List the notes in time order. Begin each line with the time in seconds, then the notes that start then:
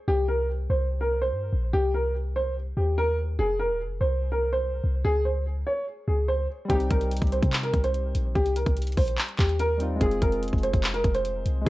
0.08 C2 G4
0.28 A#4
0.70 C2 C5
1.01 A#4
1.22 C5
1.32 G2
1.53 A#1
1.73 C2 G4
1.94 A#4
2.36 C5
2.77 D#2 G4
2.98 A#4
3.39 F1 G#4
3.59 A#4
3.70 D#1
3.85 F1
4.01 C2 C5
4.32 A#4
4.53 C5
4.84 C2
5.04 C#2 G#4
5.25 C5
5.67 C#5
6.08 C#2 G#4
6.28 C5
6.65 G3 C4
6.70 C2 D#4 G4, kick, closed hi-hat
6.75 G4
6.80 closed hi-hat
6.91 C2 A#4, kick, closed hi-hat
7.01 closed hi-hat
7.11 closed hi-hat
7.16 closed hi-hat
7.22 C2, kick, closed hi-hat
7.27 closed hi-hat
7.32 C5, closed hi-hat
7.42 C3, kick, closed hi-hat
7.53 clap, closed hi-hat
7.63 A#4, closed hi-hat
7.73 C2, kick, closed hi-hat
7.84 C5, closed hi-hat
7.94 closed hi-hat
8.15 A#1, closed hi-hat
8.35 C2 G4, kick, closed hi-hat
8.46 closed hi-hat
8.56 A#4, closed hi-hat
8.66 C2, kick, closed hi-hat
8.77 closed hi-hat
8.82 closed hi-hat
8.87 closed hi-hat
8.92 closed hi-hat
8.97 A#1 C5, kick, open hi-hat
9.08 closed hi-hat
9.18 clap, closed hi-hat
9.29 closed hi-hat
9.39 D#2 G4, kick, clap, closed hi-hat
9.49 closed hi-hat
9.60 A#4, closed hi-hat
9.78 G3 C4 D#4, closed hi-hat
9.83 F4
9.96 G#3 C4
10.01 F1 F4 G#4, kick, closed hi-hat
10.06 G#4
10.11 closed hi-hat
10.22 F1 A#4, kick, closed hi-hat
10.32 closed hi-hat
10.42 closed hi-hat
10.47 closed hi-hat
10.53 F1, kick, closed hi-hat
10.58 closed hi-hat
10.63 C5, closed hi-hat
10.73 F1, kick, closed hi-hat
10.84 clap, closed hi-hat
10.94 A#4, closed hi-hat
11.04 F1, kick, closed hi-hat
11.15 C5, closed hi-hat
11.25 closed hi-hat
11.46 C2, closed hi-hat
11.61 G#3 C#4